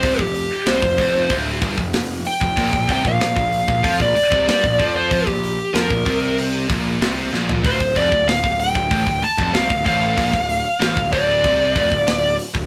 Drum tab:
HH |o-o-o-o-o-o-o-o-|o-o-o-o-o-o-o-o-|o-o-o-o-o-o-o---|o-o-o-o-o-o-o-o-|
SD |----o-------o---|----o-------o---|----o-------o-o-|----o-------o---|
FT |----------------|----------------|---------------o|----------------|
BD |oo---oo-o-oo---o|oooo-o-ooo-o-oo-|oo---oo---o-----|oooo-o-ooo-o-oo-|

HH |o-o-o-o-o-o-o-o-|
SD |----o-------o---|
FT |----------------|
BD |oo---oo-o-oo---o|